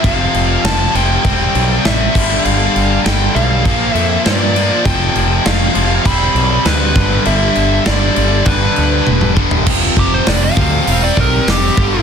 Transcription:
0.01 F1 F2 C3 F3 C4 G4 F5, kick, crash
0.34 F1, crash
0.64 F1 A5, snare, crash
0.94 F1 C3 F3 G5, crash
0.98 F2
1.24 E1 C3 G3 C4 D5, kick, crash
1.55 B1, crash
1.85 A1 E5, snare, crash
2.14 G1 G2 D3 G3 D4 A4, kick, crash
2.45 G1 F5, crash
2.75 G1, crash
3.04 G1 G2 D3 G3 G5, snare, crash
3.35 B1 F5, crash
3.64 A#1 A#2 F3 A#3 F4 C5, kick, crash
3.68 A#3
3.94 F2 E5, crash
4.25 G2 D5, snare, crash
4.54 A#2 F3 A#3, crash
4.84 F1 F2 C3 F3 C4 G4 G5, kick, crash
5.15 F1, crash
5.45 F1 F5, snare, crash
5.74 F1 F2 C3 F3, crash
6.05 E1 C3 G3 D5 B5, kick, crash
6.09 C4
6.34 B1, crash
6.65 D2 B4, snare, crash
6.95 G1 G2 D3 G3 D4 A4, kick, crash
6.99 G3
7.25 G1 E5, crash
7.55 G1, crash
7.86 G1 G2 D3 G3 D5, snare, crash
8.16 G1, crash
8.46 G1 G2 D3 B4, kick, crash
8.50 G3
8.76 D2, crash
9.07 E1, high tom
9.21 mid tom
9.36 G2 D3 G3, kick
9.51 floor tom
9.66 F1 F2 C3 F3 C4 G4, kick, crash
9.70 F3
9.82 snare
9.96 F1 G4, kick
10.14 C5
10.27 F1 D5, snare, open hi-hat
10.44 F5
10.56 D2 F2 C3 F3, kick
10.87 E1 C3 G3 C4 D5, open hi-hat
11.04 D5
11.17 B1 A#4, kick
11.47 F1 G4, snare, open hi-hat
11.76 G1 G2 D3 G3 D4 A4, kick

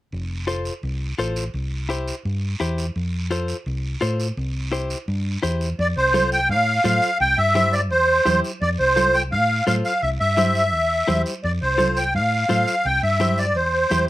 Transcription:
0.12 F1, long guiro
0.47 F4 A4 C5, short guiro
0.65 short guiro
0.83 C2, long guiro
1.18 A1 F4 A4 C5, short guiro
1.36 short guiro
1.54 C2, long guiro
1.89 E4 G4 C5, short guiro
2.08 short guiro
2.25 G2, long guiro
2.60 E2 E4 G4 C5, short guiro
2.78 short guiro
2.96 F2, long guiro
3.31 F4 A4 C5, short guiro
3.48 short guiro
3.66 C2, long guiro
4.01 A2 F4 A4 C5, short guiro
4.20 short guiro
4.37 C2, long guiro
4.72 E4 G4 C5, short guiro
4.90 short guiro
5.08 G2, long guiro
5.43 E2 E4 G4 C5, short guiro
5.61 short guiro
5.79 F2 D5, high conga, long guiro
5.97 C2 C5
6.14 F4 A4 C5, high conga, short guiro
6.32 G5, short guiro
6.49 A2 F5, high conga, long guiro
6.84 A2 F4 A4 C5 F5, high conga, short guiro
7.02 short guiro
7.20 C2 G5, high conga, long guiro
7.38 G2 E5
7.55 E4 G4 C5, high conga, short guiro
7.73 D5, short guiro
7.91 E2 C5, high conga, long guiro
8.25 E2 E4 G4 C5, high conga, short guiro
8.44 short guiro
8.62 F2 D5, high conga, long guiro
8.79 C2 C5
8.96 F4 A4 C5, high conga, short guiro
9.14 G5, short guiro
9.32 A2 F5, high conga, long guiro
9.67 A2 F4 A4 C5 F5, high conga, short guiro
9.85 F5, short guiro
10.02 C2 E5, high conga, long guiro
10.20 G2 E5
10.37 E4 G4 C5, high conga, short guiro
10.55 short guiro
10.73 E2, high conga, long guiro
11.08 E2 E4 G4 C5, high conga, short guiro
11.26 short guiro
11.44 F2 D5, high conga, long guiro
11.62 C2 C5
11.78 F4 A4 C5, high conga, short guiro
11.97 G5, short guiro
12.14 A2 F5, high conga, long guiro
12.49 A2 F4 A4 C5 F5, high conga, short guiro
12.67 short guiro
12.85 C2 G5, high conga, long guiro
13.03 G2 E5
13.20 E4 G4 C5, high conga, short guiro
13.38 D5, short guiro
13.55 E2 C5, high conga, long guiro
13.91 E2 E4 G4 C5, high conga, short guiro

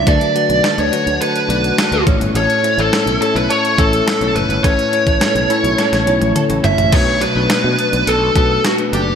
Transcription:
Already playing: D4 E4
0.06 D2 D3 F#3 A3 D4 F#4 A4 B4 D5, kick, closed hi-hat
0.21 closed hi-hat
0.35 A3 D4 F#4 B4, closed hi-hat
0.50 B1, closed hi-hat
0.63 A4 D5, snare, closed hi-hat
0.78 D2 C#5, closed hi-hat
0.92 A3 D4 F#4 B4, closed hi-hat
1.07 D2, closed hi-hat
1.21 A4 B4, closed hi-hat
1.36 closed hi-hat
1.48 B1 A3 D4 F#4 D5, closed hi-hat
1.64 closed hi-hat
1.78 A4, snare, closed hi-hat
1.92 D2 A3 D4 F#4 B4, closed hi-hat
2.06 A1 A2 A3 C#4 E4 C#5, kick, closed hi-hat
2.20 G1, closed hi-hat
2.35 A1 C#4 A4 C#5, closed hi-hat
2.50 closed hi-hat
2.63 A3 C#4 E4 C5, closed hi-hat
2.71 C#5
2.78 A1 A4, closed hi-hat
2.92 A4, snare, closed hi-hat
3.06 B1, closed hi-hat
3.21 A3 C#4 E4 A4 C#5, closed hi-hat
3.35 B1 B4, closed hi-hat
3.49 A4 C#5, closed hi-hat
3.65 closed hi-hat
3.78 A1 A3 C#4 E4 A4 C#5, kick, closed hi-hat
3.93 closed hi-hat
4.07 A4, snare, closed hi-hat
4.21 B1 A3 C#4 E4 C#5, closed hi-hat
4.35 F#1 A2 C#4 B4, closed hi-hat
4.49 G1, closed hi-hat
4.63 A1 A3 C#4 E4 A4 B4 C#5, kick, closed hi-hat
4.79 closed hi-hat
4.92 A3 C#4 E4 C#5, closed hi-hat
5.07 A1, kick, closed hi-hat
5.21 A4, snare, closed hi-hat
5.35 B1, closed hi-hat
5.50 A3 C#4 E4 A4 C#5, closed hi-hat
5.64 B1, closed hi-hat
5.78 A4, snare, closed hi-hat
5.93 A1, snare, closed hi-hat
6.07 B1 A3 C#4 E4 C#5, closed hi-hat
6.21 A1, closed hi-hat, high tom
6.35 A4, closed hi-hat, mid tom
6.49 A1 A3 C#4 E4 C#5, closed hi-hat
6.64 G1 C#4 E5, closed hi-hat, floor tom
6.78 A1, closed hi-hat, floor tom
6.92 B1 B2 F#3 A3 D4 F#4 B4 C#5, kick, closed hi-hat, crash
7.21 D4 B4, closed hi-hat
7.35 B1 A3 D4 F#4 B4
7.50 B3, snare, closed hi-hat
7.64 B2
7.79 D4, closed hi-hat
7.93 B1, closed hi-hat
8.07 B1 A4, closed hi-hat
8.35 B1 A3 B3 D4 F#4 A4 B4, kick, closed hi-hat
8.64 F#4 A4, snare, closed hi-hat
8.78 A3 D4 F#4 B4, closed hi-hat
8.93 F#1 D4 G4, closed hi-hat

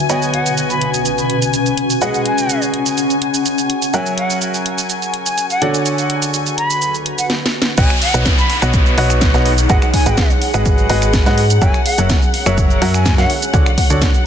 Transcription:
Already playing: F#4 B4 G#5
0.09 B2 B3 F#4 B4 C#5 D#5 F#5 G#5, closed hi-hat, shaker
0.22 closed hi-hat, shaker
0.27 C#4
0.33 F#5, closed hi-hat
0.46 closed hi-hat, shaker
0.58 closed hi-hat, shaker
0.70 B5, closed hi-hat, shaker
0.81 closed hi-hat
0.94 F#5 G#5 C#6, closed hi-hat, shaker
1.06 closed hi-hat, shaker
1.18 closed hi-hat, shaker
1.30 closed hi-hat
1.42 closed hi-hat, shaker
1.54 closed hi-hat, shaker
1.66 closed hi-hat, shaker
1.78 closed hi-hat
1.90 closed hi-hat, shaker
2.01 G#3 F#4 G#4 B4 D#5 F#5, closed hi-hat, shaker
2.14 F#5, closed hi-hat, shaker
2.26 G#5, closed hi-hat
2.38 closed hi-hat, shaker
2.50 closed hi-hat, shaker
2.62 closed hi-hat, shaker
2.74 closed hi-hat
2.86 closed hi-hat, shaker
2.98 closed hi-hat, shaker
3.10 closed hi-hat, shaker
3.22 closed hi-hat
3.34 closed hi-hat, shaker
3.46 closed hi-hat, shaker
3.58 closed hi-hat, shaker
3.70 closed hi-hat
3.82 closed hi-hat, shaker
3.94 F#3 F#4 A#4 C#5 E5 F#5 G#5, closed hi-hat, shaker
4.06 closed hi-hat, shaker
4.18 F#5, closed hi-hat
4.30 closed hi-hat, shaker
4.42 closed hi-hat, shaker
4.54 closed hi-hat, shaker
4.66 closed hi-hat
4.78 closed hi-hat, shaker
4.90 closed hi-hat, shaker
5.02 closed hi-hat, shaker
5.14 closed hi-hat
5.26 G#5, closed hi-hat, shaker
5.38 closed hi-hat, shaker
5.50 F#5, closed hi-hat, shaker
5.62 D3 F#4 A4 C#5 D5 F#5, closed hi-hat
5.74 closed hi-hat, shaker
5.86 closed hi-hat, shaker
5.98 closed hi-hat, shaker
6.10 closed hi-hat
6.22 closed hi-hat, shaker
6.34 closed hi-hat, shaker
6.46 closed hi-hat, shaker
6.58 B5, closed hi-hat
6.70 closed hi-hat, shaker
6.82 closed hi-hat, shaker
6.95 closed hi-hat, shaker
7.06 closed hi-hat
7.18 F#5, closed hi-hat, shaker
7.30 snare
7.46 snare
7.62 snare
7.77 B1 B3 D#4 F#4 B4 C#5 D#5 F#5 G#5, kick, closed hi-hat, crash, downlifter, shaker
7.90 finger snap, closed hi-hat, shaker
8.02 C#5 F#5, open hi-hat
8.14 B1 B3 F#4 B4 C#5 D#5 F#5, closed hi-hat, shaker
8.26 kick, snare, closed hi-hat, shaker
8.31 G#4
8.38 B5, closed hi-hat, shaker
8.50 open hi-hat
8.62 B1 B3 F#4 B4 C#5 D#5 F#5, finger snap, closed hi-hat, shaker
8.74 kick, closed hi-hat, shaker
8.86 closed hi-hat, shaker
8.98 B1 B3 F#4 B4 C#5 D#5 F#5, open hi-hat
9.10 finger snap, closed hi-hat, shaker
9.21 kick, snare, closed hi-hat, shaker
9.34 B1 B3 F#4 B4 C#5 D#5 F#5, snare, closed hi-hat, shaker
9.46 open hi-hat
9.58 closed hi-hat, shaker
9.69 G#1 G#3 F#4 G#4 B4 D#5 F#5, kick, closed hi-hat, shaker
9.82 F#5, finger snap, closed hi-hat, shaker
9.94 G#5, kick, open hi-hat
10.06 G#1 G#3 F#4 G#4 B4 D#5 F#5, closed hi-hat, shaker
10.17 kick, snare, closed hi-hat, shaker
10.30 closed hi-hat, shaker
10.42 open hi-hat
10.54 G#1 G#3 F#4 G#4 B4 D#5 F#5 A#5, finger snap, closed hi-hat, shaker
10.66 kick, closed hi-hat, shaker
10.78 closed hi-hat, shaker
10.89 G#1 G#3 F#4 G#4 B4 D#5 F#5, open hi-hat
11.02 finger snap, closed hi-hat, shaker
11.13 kick, snare, closed hi-hat, shaker
11.26 G#2 G#3 F#4 G#4 B4 D#5 F#5, snare, closed hi-hat, shaker
11.38 open hi-hat
11.50 closed hi-hat, shaker
11.62 F#1 F#3 F#4 A#4 C#5 E5 F#5 G#5, kick, closed hi-hat, shaker
11.74 finger snap, closed hi-hat, shaker
11.86 F#5, open hi-hat
11.98 F#1 F#3 F#4 A#4 C#5 E5 F#5, closed hi-hat, shaker
12.10 kick, snare, closed hi-hat, shaker
12.22 closed hi-hat, shaker
12.34 open hi-hat
12.46 F#1 F#3 F#4 A#4 C#5 E5 F#5, finger snap, closed hi-hat, shaker
12.58 kick, closed hi-hat, shaker
12.70 closed hi-hat, shaker
12.82 F#2 F#3 F#4 A#4 C#5 E5 F#5, open hi-hat
12.94 G#5, finger snap, closed hi-hat, shaker
13.06 kick, snare, closed hi-hat, shaker
13.18 F#2 D3 F#4 A#4 C#5 E5 F#5, snare, closed hi-hat, shaker
13.30 F#4, open hi-hat
13.42 closed hi-hat, shaker
13.54 D2 D3 F#4 A4 C#5 D5 F#5, kick, closed hi-hat, shaker
13.66 finger snap, closed hi-hat, shaker
13.78 kick, open hi-hat
13.90 D2 D3 F#4 A4 C#5 D5 F#5, closed hi-hat, shaker
14.02 kick, snare, closed hi-hat, shaker
14.14 closed hi-hat, shaker

